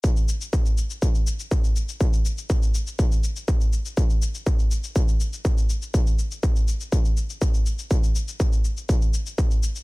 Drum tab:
SH |xxxxxxxxxxxxxxxx|xxxxxxxxxxxxxxxx|xxxxxxxxxxxxxxxx|xxxxxxxxxxxxxxxx|
BD |o---o---o---o---|o---o---o---o---|o---o---o---o---|o---o---o---o---|

SH |xxxxxxxxxxxxxxxx|
BD |o---o---o---o---|